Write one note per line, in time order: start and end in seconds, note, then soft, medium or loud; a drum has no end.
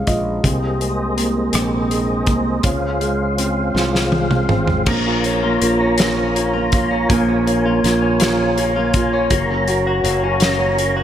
0.00 0.46 G#3 soft
0.00 0.40 C#4 medium
0.00 0.07 F4 soft
0.00 0.41 G#4 soft
0.00 0.46 F5 medium
0.07 0.42 A#1 medium
0.07 0.43 F4 medium
0.07 0.41 D#5 medium
0.07 kick medium
0.07 closed hi-hat medium
0.43 1.50 C2 medium
0.43 2.60 C3 medium
0.43 2.62 A#3 medium
0.43 4.83 G#4 medium
0.43 4.83 C5 medium
0.43 2.62 D#5 medium
0.43 kick medium
0.43 closed hi-hat medium
0.80 1.89 G#3 soft
0.80 closed hi-hat soft
1.17 2.25 A#3 soft
1.17 closed hi-hat medium
1.53 2.27 A#1 medium
1.53 2.61 C4 medium
1.53 cross-stick medium
1.53 closed hi-hat medium
1.90 2.62 G#3 soft
1.90 closed hi-hat medium
2.27 2.62 C2 medium
2.27 2.63 A#3 soft
2.27 kick medium
2.27 closed hi-hat medium
2.63 3.71 C#2 medium
2.63 4.82 C#4 medium
2.63 4.85 F4 medium
2.63 4.84 F5 medium
2.63 kick loud
2.63 closed hi-hat medium
3.00 4.11 G#3 medium
3.00 closed hi-hat soft
3.38 4.49 C4 soft
3.38 cross-stick soft
3.38 closed hi-hat medium
3.75 4.45 C2 medium
3.75 4.83 F4 medium
3.75 snare soft
3.95 snare medium
4.12 4.85 G#3 soft
4.12 high tom medium
4.31 mid tom medium
4.49 4.84 G#1 medium
4.49 4.86 C4 medium
4.49 mid tom medium
4.67 floor tom medium
4.86 5.57 A#1 medium
4.86 5.98 F3 medium
4.86 5.42 A#3 medium
4.86 9.27 F4 medium
4.86 11.03 A#4 medium
4.86 11.03 C#5 medium
4.86 7.07 A#5 medium
4.86 kick loud
4.86 crash loud
5.06 5.80 C#4 medium
5.06 5.60 F4 medium
5.24 5.62 A#3 medium
5.24 5.79 C#5 medium
5.24 closed hi-hat soft
5.43 6.53 A#3 medium
5.43 6.52 F4 medium
5.62 7.06 A#1 medium
5.62 6.35 A#3 medium
5.62 5.98 F4 medium
5.62 closed hi-hat medium
5.81 6.17 C#4 medium
5.81 6.15 C#5 medium
5.98 7.09 F3 medium
5.98 6.35 F4 medium
5.98 snare loud
5.98 closed hi-hat medium
6.17 6.91 C#4 medium
6.17 6.91 C#5 medium
6.35 6.72 A#3 medium
6.35 6.72 F4 medium
6.35 closed hi-hat medium
6.54 7.09 A#3 medium
6.54 7.64 F4 medium
6.72 7.46 A#3 soft
6.72 7.27 F4 medium
6.72 kick medium
6.72 closed hi-hat medium
6.91 7.28 C#4 medium
6.91 7.46 C#5 medium
7.09 7.80 A#1 loud
7.09 8.20 F3 medium
7.09 7.63 A#3 medium
7.09 9.28 G#5 medium
7.09 kick loud
7.09 closed hi-hat medium
7.28 8.02 C#4 medium
7.28 7.83 F4 medium
7.47 7.83 A#3 medium
7.47 8.01 C#5 medium
7.47 closed hi-hat soft
7.65 8.75 A#3 medium
7.65 8.75 F4 medium
7.84 9.27 A#1 medium
7.84 8.58 A#3 medium
7.84 8.19 F4 medium
7.84 snare soft
7.84 closed hi-hat medium
8.02 8.39 C#4 medium
8.02 8.38 C#5 medium
8.20 9.38 F3 medium
8.20 8.57 F4 medium
8.20 snare loud
8.20 closed hi-hat medium
8.39 9.13 C#4 medium
8.39 9.12 C#5 medium
8.58 8.95 A#3 medium
8.58 8.93 F4 medium
8.58 closed hi-hat medium
8.76 9.30 A#3 medium
8.76 9.38 F4 medium
8.94 9.31 A#3 medium
8.94 9.30 F4 medium
8.94 kick medium
8.94 closed hi-hat medium
9.13 9.50 C#4 medium
9.13 9.31 C#5 medium
9.30 10.00 F#1 medium
9.30 11.03 F#3 medium
9.30 9.68 A#3 medium
9.30 11.03 F#4 medium
9.30 11.03 A#5 medium
9.30 kick medium
9.30 closed hi-hat medium
9.50 10.39 C#4 medium
9.50 10.23 C#4 medium
9.68 10.04 A#3 medium
9.68 10.21 F#4 medium
9.68 closed hi-hat soft
9.87 10.95 F#4 medium
9.87 10.58 C#5 medium
10.04 11.03 F#1 loud
10.04 10.42 A#3 medium
10.04 11.03 A#4 medium
10.04 closed hi-hat medium
10.23 10.59 C#4 medium
10.23 10.76 F#4 medium
10.40 10.78 A#3 medium
10.40 11.03 C#4 medium
10.40 snare loud
10.40 closed hi-hat medium
10.59 11.03 C#4 medium
10.59 10.94 C#5 medium
10.78 11.03 A#3 medium
10.78 11.03 F#4 medium
10.78 closed hi-hat medium
10.96 11.03 F#4 medium
10.96 11.03 C#5 medium